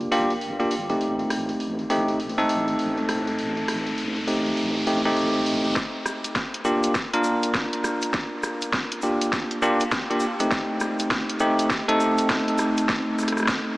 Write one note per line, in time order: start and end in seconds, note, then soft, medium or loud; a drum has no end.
0.00 0.98 G1 medium
0.00 open hi-hat soft
0.12 0.32 A#3 medium
0.12 0.32 D4 medium
0.12 0.32 F4 medium
0.12 0.32 G4 loud
0.12 open hi-hat medium
0.30 open hi-hat soft
0.41 open hi-hat soft
0.60 0.74 A#3 medium
0.60 0.74 D4 medium
0.60 0.74 F4 medium
0.60 0.74 G4 medium
0.60 open hi-hat soft
0.71 open hi-hat medium
0.90 1.87 A3 medium
0.90 1.87 C4 medium
0.90 1.87 D#4 medium
0.90 1.87 G4 medium
0.90 open hi-hat soft
1.01 5.74 A1 medium
1.01 open hi-hat soft
1.01 riser medium
1.19 open hi-hat soft
1.30 cross-stick soft
1.30 open hi-hat medium
1.49 open hi-hat soft
1.60 open hi-hat soft
1.79 open hi-hat soft
1.90 2.18 A3 medium
1.90 2.18 C4 medium
1.90 2.18 D#4 medium
1.90 2.18 G4 medium
1.90 open hi-hat medium
2.08 open hi-hat soft
2.20 open hi-hat soft
2.29 open hi-hat soft
2.38 4.25 A3 medium
2.38 4.25 C4 medium
2.38 4.25 D#4 medium
2.38 4.25 A4 loud
2.38 open hi-hat soft
2.49 open hi-hat medium
2.68 open hi-hat soft
2.79 open hi-hat soft
2.97 open hi-hat soft
3.09 cross-stick soft
3.09 open hi-hat medium
3.27 open hi-hat soft
3.39 open hi-hat soft
3.57 open hi-hat soft
3.68 cross-stick soft
3.68 open hi-hat medium
3.87 open hi-hat soft
3.98 open hi-hat soft
4.16 open hi-hat soft
4.27 4.84 A3 medium
4.27 4.84 C4 medium
4.27 4.84 D#4 medium
4.27 4.84 G4 medium
4.27 open hi-hat medium
4.46 open hi-hat soft
4.57 open hi-hat soft
4.76 open hi-hat soft
4.87 5.01 A3 medium
4.87 5.01 C4 medium
4.87 5.01 D#4 medium
4.87 5.01 G4 medium
4.87 open hi-hat medium
5.05 5.75 A3 medium
5.05 5.75 C4 medium
5.05 5.75 D#4 medium
5.05 5.75 G4 loud
5.05 open hi-hat soft
5.17 open hi-hat soft
5.35 open hi-hat soft
5.46 open hi-hat medium
5.65 open hi-hat soft
5.76 kick medium
5.76 snare soft
5.76 shaker soft
6.06 cross-stick medium
6.06 shaker medium
6.24 closed hi-hat medium
6.24 shaker soft
6.35 kick medium
6.35 snare soft
6.35 shaker soft
6.54 closed hi-hat medium
6.65 6.93 A#3 medium
6.65 6.93 D4 medium
6.65 6.93 F4 medium
6.65 6.93 G4 medium
6.65 shaker medium
6.83 closed hi-hat medium
6.83 shaker soft
6.94 kick medium
6.94 snare soft
6.94 shaker soft
7.13 9.00 A#3 medium
7.13 9.00 D4 medium
7.13 9.00 F4 medium
7.13 9.00 A#4 loud
7.13 closed hi-hat medium
7.24 shaker medium
7.43 closed hi-hat medium
7.43 shaker soft
7.54 kick loud
7.54 snare soft
7.54 shaker soft
7.73 closed hi-hat soft
7.84 cross-stick medium
7.84 shaker medium
8.02 closed hi-hat medium
8.02 shaker soft
8.13 kick loud
8.13 snare soft
8.13 shaker soft
8.43 cross-stick medium
8.43 shaker medium
8.61 closed hi-hat medium
8.61 shaker medium
8.73 kick medium
8.73 snare medium
8.73 shaker soft
8.92 closed hi-hat medium
9.02 9.60 A#3 medium
9.02 9.60 D4 medium
9.02 9.60 F4 medium
9.02 9.60 G4 medium
9.02 shaker medium
9.21 closed hi-hat medium
9.21 shaker medium
9.33 kick loud
9.33 snare medium
9.33 shaker soft
9.51 closed hi-hat medium
9.62 9.82 A#3 loud
9.62 9.82 D4 medium
9.62 9.82 F4 medium
9.62 9.83 G4 loud
9.62 shaker medium
9.80 closed hi-hat medium
9.80 shaker medium
9.92 kick medium
9.92 snare medium
9.92 shaker soft
10.10 10.24 A#3 medium
10.10 10.24 D4 medium
10.10 10.25 F4 medium
10.10 10.24 G4 loud
10.10 closed hi-hat soft
10.20 shaker medium
10.40 11.38 A3 medium
10.40 11.38 C4 medium
10.40 11.38 D#4 medium
10.40 11.38 G4 medium
10.40 closed hi-hat medium
10.40 shaker medium
10.51 kick loud
10.51 snare medium
10.51 shaker soft
10.80 cross-stick soft
10.80 shaker medium
10.99 closed hi-hat medium
10.99 shaker soft
11.10 kick loud
11.10 snare medium
11.10 shaker soft
11.29 closed hi-hat medium
11.40 11.68 A3 medium
11.40 11.68 C4 medium
11.40 11.68 D#4 medium
11.40 11.68 G4 loud
11.40 shaker loud
11.59 closed hi-hat medium
11.59 shaker medium
11.70 kick medium
11.70 snare medium
11.70 shaker soft
11.88 13.75 A3 medium
11.88 13.75 C4 medium
11.88 13.75 D#4 medium
11.88 13.75 A4 loud
11.88 closed hi-hat medium
12.00 shaker loud
12.18 closed hi-hat medium
12.18 shaker medium
12.29 kick loud
12.29 snare medium
12.29 shaker soft
12.48 closed hi-hat soft
12.58 cross-stick medium
12.58 shaker medium
12.77 closed hi-hat medium
12.77 shaker medium
12.89 kick loud
12.89 snare medium
12.89 shaker soft
13.19 cross-stick soft
13.19 shaker medium
13.23 cross-stick soft
13.28 cross-stick soft
13.28 closed hi-hat medium
13.32 cross-stick soft
13.37 cross-stick soft
13.37 shaker medium
13.40 cross-stick soft
13.43 cross-stick soft
13.45 kick loud
13.45 cross-stick soft
13.45 snare medium
13.45 shaker soft